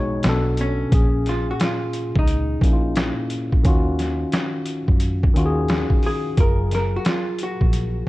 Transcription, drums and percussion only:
0.23 snare medium
0.23 closed hi-hat medium
0.57 closed hi-hat medium
0.92 kick loud
0.92 closed hi-hat medium
1.26 snare soft
1.26 closed hi-hat medium
1.60 snare medium
1.60 closed hi-hat medium
1.93 closed hi-hat medium
2.15 kick medium
2.27 closed hi-hat medium
2.61 kick medium
2.61 closed hi-hat medium
2.96 snare loud
2.96 closed hi-hat medium
3.30 closed hi-hat medium
3.52 kick medium
3.65 kick loud
3.65 closed hi-hat medium
3.99 snare soft
3.99 closed hi-hat medium
4.32 snare medium
4.32 closed hi-hat medium
4.66 closed hi-hat medium
4.88 kick medium
5.00 closed hi-hat medium
5.23 kick loud
5.36 closed hi-hat medium
5.68 snare medium
5.68 closed hi-hat medium
5.90 kick medium
6.03 open hi-hat soft
6.37 kick loud
6.37 closed hi-hat medium
6.71 snare soft
6.71 closed hi-hat medium
7.05 snare medium
7.05 closed hi-hat medium
7.39 closed hi-hat medium
7.61 kick medium
7.73 closed hi-hat medium

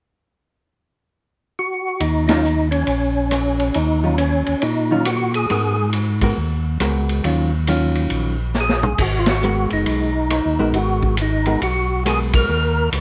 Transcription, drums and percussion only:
2.00 ride soft
2.29 snare medium
2.29 ride medium
2.45 hi-hat pedal medium
2.72 ride soft
2.87 ride soft
3.31 cross-stick medium
3.31 hi-hat pedal medium
3.31 ride medium
3.60 ride soft
3.74 ride medium
4.18 hi-hat pedal medium
4.18 ride medium
4.46 ride soft
4.62 ride medium
5.05 cross-stick medium
5.05 hi-hat pedal medium
5.05 ride medium
5.34 ride soft
5.50 ride medium
5.93 hi-hat pedal soft
5.93 ride medium
6.21 kick medium
6.21 ride medium
6.80 cross-stick medium
6.80 hi-hat pedal medium
6.80 ride medium
7.09 ride soft
7.24 ride medium
7.67 hi-hat pedal medium
7.67 ride medium
7.95 ride soft
8.10 ride medium
8.54 snare soft
8.54 hi-hat pedal medium
8.69 snare medium
8.83 mid tom medium
8.98 kick medium
8.98 crash medium
9.26 snare medium
9.26 ride medium
9.42 hi-hat pedal medium
9.70 ride soft
9.86 ride medium
10.30 cross-stick medium
10.30 hi-hat pedal soft
10.30 ride medium
10.74 ride medium
11.03 kick soft
11.17 hi-hat pedal medium
11.17 ride medium
11.46 ride soft
11.62 ride medium
12.06 cross-stick medium
12.06 hi-hat pedal soft
12.06 ride medium
12.33 kick medium
12.33 ride medium
12.93 hi-hat pedal medium
12.93 ride medium

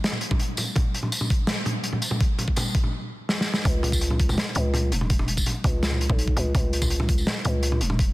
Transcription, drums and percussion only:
0.04 snare loud
0.04 closed hi-hat medium
0.12 mid tom soft
0.21 closed hi-hat medium
0.31 kick loud
0.31 mid tom medium
0.39 closed hi-hat medium
0.57 closed hi-hat medium
0.57 mid tom medium
0.57 tambourine medium
0.76 kick loud
0.76 closed hi-hat medium
0.76 mid tom medium
0.94 closed hi-hat medium
1.03 mid tom soft
1.12 closed hi-hat medium
1.12 tambourine medium
1.21 mid tom medium
1.30 kick loud
1.30 closed hi-hat medium
1.47 snare loud
1.47 closed hi-hat medium
1.47 mid tom medium
1.66 closed hi-hat medium
1.66 mid tom medium
1.84 closed hi-hat medium
1.93 mid tom medium
2.02 closed hi-hat medium
2.02 tambourine medium
2.11 mid tom medium
2.21 kick loud
2.21 closed hi-hat medium
2.39 closed hi-hat medium
2.39 mid tom medium
2.48 kick medium
2.56 closed hi-hat medium
2.56 mid tom medium
2.56 tambourine medium
2.75 kick loud
2.75 closed hi-hat medium
2.83 mid tom soft
3.29 snare medium
3.41 snare medium
3.54 snare medium
3.65 kick loud
3.65 closed hi-hat medium
3.65 mid tom medium
3.83 closed hi-hat medium
3.83 mid tom medium
3.92 kick medium
3.92 tambourine medium
4.01 closed hi-hat medium
4.10 mid tom medium
4.20 kick loud
4.20 closed hi-hat medium
4.29 mid tom medium
4.29 tambourine soft
4.38 snare loud
4.38 closed hi-hat soft
4.55 closed hi-hat medium
4.55 mid tom soft
4.74 closed hi-hat medium
4.74 mid tom medium
4.92 closed hi-hat medium
5.01 mid tom medium
5.10 kick loud
5.10 closed hi-hat loud
5.19 mid tom medium
5.28 closed hi-hat medium
5.37 kick medium
5.37 tambourine medium
5.46 closed hi-hat loud
5.46 mid tom medium
5.64 kick loud
5.64 closed hi-hat medium
5.64 mid tom medium
5.83 snare loud
5.83 closed hi-hat medium
5.92 mid tom soft
6.01 closed hi-hat medium
6.10 kick loud
6.10 mid tom medium
6.19 closed hi-hat medium
6.28 kick medium
6.37 closed hi-hat medium
6.37 mid tom soft
6.55 kick loud
6.55 closed hi-hat medium
6.55 mid tom medium
6.73 closed hi-hat medium
6.82 kick medium
6.82 mid tom medium
6.82 tambourine medium
6.90 closed hi-hat loud
7.00 mid tom medium
7.09 kick loud
7.09 closed hi-hat medium
7.18 tambourine soft
7.27 snare loud
7.27 closed hi-hat medium
7.27 mid tom soft
7.45 closed hi-hat medium
7.45 mid tom medium
7.63 closed hi-hat medium
7.72 mid tom medium
7.81 closed hi-hat medium
7.90 mid tom medium
7.99 kick loud
7.99 closed hi-hat medium

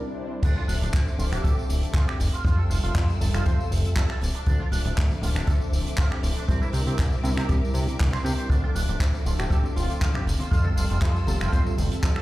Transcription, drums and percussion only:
0.43 kick loud
0.43 closed hi-hat medium
0.43 crash loud
0.43 tambourine soft
0.69 open hi-hat loud
0.69 tambourine medium
0.82 closed hi-hat medium
0.82 tambourine soft
0.93 kick loud
0.93 clap loud
0.93 closed hi-hat medium
1.08 tambourine soft
1.19 open hi-hat loud
1.19 tambourine medium
1.33 finger snap medium
1.33 closed hi-hat medium
1.33 tambourine soft
1.44 kick loud
1.44 closed hi-hat medium
1.44 tambourine soft
1.59 tambourine soft
1.69 open hi-hat loud
1.69 tambourine medium
1.83 closed hi-hat medium
1.83 tambourine soft
1.94 kick loud
1.94 clap loud
1.94 closed hi-hat medium
1.94 tambourine soft
2.09 finger snap medium
2.20 open hi-hat loud
2.20 tambourine medium
2.34 closed hi-hat medium
2.34 tambourine soft
2.45 kick loud
2.45 closed hi-hat medium
2.45 tambourine soft
2.71 open hi-hat loud
2.71 tambourine medium
2.84 closed hi-hat medium
2.84 tambourine soft
2.95 kick loud
2.95 clap loud
2.95 closed hi-hat medium
2.95 tambourine soft
3.10 tambourine soft
3.21 open hi-hat loud
3.21 tambourine medium
3.34 finger snap medium
3.34 closed hi-hat medium
3.34 tambourine soft
3.46 kick loud
3.46 closed hi-hat medium
3.46 tambourine soft
3.60 tambourine soft
3.72 open hi-hat loud
3.72 tambourine medium
3.85 closed hi-hat medium
3.85 tambourine soft
3.96 kick loud
3.96 clap loud
3.96 closed hi-hat medium
3.96 tambourine soft
4.10 finger snap medium
4.21 open hi-hat loud
4.21 tambourine medium
4.35 closed hi-hat medium
4.35 tambourine soft
4.46 kick loud
4.46 closed hi-hat medium
4.46 tambourine soft
4.72 open hi-hat loud
4.72 tambourine medium
4.85 closed hi-hat medium
4.85 tambourine soft
4.97 kick loud
4.97 clap loud
4.97 closed hi-hat medium
4.97 tambourine soft
5.11 tambourine soft
5.23 open hi-hat loud
5.23 tambourine medium
5.36 finger snap medium
5.36 closed hi-hat medium
5.36 tambourine soft
5.47 kick loud
5.47 closed hi-hat medium
5.47 tambourine soft
5.61 tambourine soft
5.73 open hi-hat loud
5.73 tambourine medium
5.87 closed hi-hat medium
5.87 tambourine soft
5.98 kick loud
5.98 clap loud
5.98 closed hi-hat medium
5.98 tambourine soft
6.12 finger snap medium
6.23 open hi-hat loud
6.23 tambourine medium
6.37 closed hi-hat medium
6.37 tambourine soft
6.49 kick loud
6.49 closed hi-hat medium
6.49 tambourine soft
6.63 tambourine soft
6.73 open hi-hat loud
6.73 tambourine medium
6.87 closed hi-hat medium
6.87 tambourine soft
6.98 kick loud
6.98 clap loud
6.98 closed hi-hat medium
6.98 tambourine soft
7.13 tambourine soft
7.23 open hi-hat medium
7.23 tambourine medium
7.37 finger snap medium
7.37 closed hi-hat medium
7.37 tambourine soft
7.49 kick loud
7.49 closed hi-hat medium
7.49 tambourine soft
7.65 tambourine soft
7.74 open hi-hat loud
7.74 tambourine medium
7.88 closed hi-hat medium
7.88 tambourine soft
7.99 kick loud
7.99 clap loud
7.99 closed hi-hat medium
7.99 tambourine soft
8.13 finger snap medium
8.13 tambourine soft
8.26 open hi-hat loud
8.26 tambourine medium
8.38 closed hi-hat medium
8.38 tambourine soft
8.50 kick loud
8.50 closed hi-hat medium
8.50 tambourine soft
8.75 open hi-hat loud
8.75 tambourine medium
8.89 closed hi-hat medium
8.89 tambourine soft
9.00 kick loud
9.00 clap loud
9.00 closed hi-hat medium
9.00 tambourine soft
9.15 tambourine soft
9.26 open hi-hat loud
9.26 tambourine medium
9.39 finger snap medium
9.39 closed hi-hat medium
9.39 tambourine soft
9.50 kick loud
9.50 closed hi-hat medium
9.50 tambourine soft
9.64 tambourine soft
9.64 low conga medium
9.76 open hi-hat loud
9.76 tambourine medium
9.90 closed hi-hat medium
9.90 tambourine soft
10.01 kick loud
10.01 clap loud
10.01 closed hi-hat medium
10.01 tambourine soft
10.14 finger snap medium
10.14 low conga medium
10.27 open hi-hat loud
10.27 tambourine medium
10.39 closed hi-hat medium
10.39 tambourine soft
10.39 high conga medium
10.39 low conga medium
10.52 kick loud
10.52 closed hi-hat medium
10.52 tambourine medium
10.64 high conga medium
10.77 open hi-hat loud
10.77 tambourine medium
10.90 closed hi-hat medium
10.90 tambourine soft
11.02 kick loud
11.02 clap loud
11.02 closed hi-hat medium
11.02 tambourine medium
11.16 tambourine soft
11.27 open hi-hat loud
11.27 tambourine medium
11.27 high conga medium
11.41 finger snap medium
11.41 closed hi-hat medium
11.41 tambourine soft
11.53 kick loud
11.53 closed hi-hat medium
11.53 tambourine medium
11.66 tambourine soft
11.66 low conga medium
11.78 open hi-hat loud
11.78 tambourine medium
11.78 high conga medium
11.92 closed hi-hat medium
11.92 tambourine soft
12.03 kick loud
12.03 clap loud
12.03 closed hi-hat medium
12.03 tambourine soft
12.16 finger snap medium
12.16 low conga medium

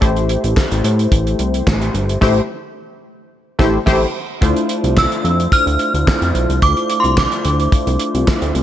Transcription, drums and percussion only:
0.02 kick loud
0.02 closed hi-hat medium
0.16 closed hi-hat soft
0.29 closed hi-hat medium
0.44 closed hi-hat medium
0.57 kick loud
0.57 snare loud
0.57 clap medium
0.72 closed hi-hat medium
0.84 closed hi-hat medium
0.99 closed hi-hat soft
1.12 kick loud
1.12 closed hi-hat medium
1.27 closed hi-hat medium
1.39 closed hi-hat medium
1.54 closed hi-hat medium
1.67 kick loud
1.67 snare loud
1.67 clap medium
1.82 closed hi-hat medium
1.95 closed hi-hat medium
2.09 closed hi-hat medium
2.22 kick loud
2.22 snare loud
2.22 crash medium
3.59 kick loud
3.59 snare loud
3.87 kick loud
3.87 snare loud
3.87 crash medium
4.42 kick loud
4.42 closed hi-hat loud
4.56 closed hi-hat soft
4.69 closed hi-hat medium
4.84 closed hi-hat medium
4.97 kick loud
4.97 snare loud
4.97 clap medium
5.12 closed hi-hat medium
5.25 closed hi-hat medium
5.40 closed hi-hat medium
5.52 kick loud
5.52 closed hi-hat loud
5.67 closed hi-hat medium
5.79 closed hi-hat medium
5.95 closed hi-hat medium
6.07 kick loud
6.07 snare loud
6.07 clap loud
6.22 closed hi-hat medium
6.35 closed hi-hat medium
6.50 closed hi-hat medium
6.62 kick loud
6.62 closed hi-hat loud
6.77 closed hi-hat medium
6.90 closed hi-hat medium
7.04 closed hi-hat medium
7.17 kick loud
7.17 snare loud
7.17 clap medium
7.32 closed hi-hat medium
7.45 closed hi-hat medium
7.60 closed hi-hat medium
7.72 kick loud
7.72 closed hi-hat loud
7.87 closed hi-hat medium
7.99 closed hi-hat medium
8.15 closed hi-hat medium
8.28 kick loud
8.28 snare loud
8.28 clap medium
8.42 closed hi-hat medium
8.55 closed hi-hat medium

